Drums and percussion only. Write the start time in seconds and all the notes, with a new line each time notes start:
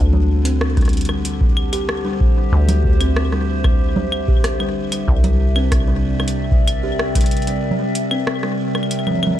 0.13 low conga
0.45 closed hi-hat
0.61 cross-stick
0.77 kick, cross-stick, closed hi-hat
0.81 cross-stick, closed hi-hat
0.85 cross-stick, closed hi-hat
0.89 closed hi-hat
0.93 closed hi-hat
0.97 closed hi-hat
1.01 closed hi-hat
1.05 cross-stick, closed hi-hat, claves
1.25 closed hi-hat
1.41 kick
1.57 claves
1.73 closed hi-hat, claves
1.89 cross-stick
2.21 kick
2.69 closed hi-hat, low conga
2.84 kick
3.01 closed hi-hat, claves
3.16 cross-stick
3.32 cross-stick
3.64 kick, cross-stick, claves
3.96 low conga
4.12 claves
4.28 kick
4.44 cross-stick, closed hi-hat
4.60 claves
4.92 closed hi-hat, claves
5.08 kick
5.24 closed hi-hat, low conga
5.56 claves
5.72 kick, cross-stick, closed hi-hat
6.20 cross-stick, claves
6.28 closed hi-hat
6.51 kick
6.68 closed hi-hat, claves
6.99 cross-stick
7.15 kick, closed hi-hat
7.21 closed hi-hat
7.26 closed hi-hat
7.31 closed hi-hat
7.37 closed hi-hat
7.42 closed hi-hat
7.47 closed hi-hat
7.71 low conga
7.95 closed hi-hat
8.11 claves
8.27 cross-stick
8.43 cross-stick
8.75 cross-stick, claves
8.83 claves
8.91 closed hi-hat, claves
8.99 claves
9.07 low conga, claves
9.11 low conga
9.15 low conga
9.19 low conga
9.23 low conga, claves
9.27 low conga
9.31 low conga
9.35 low conga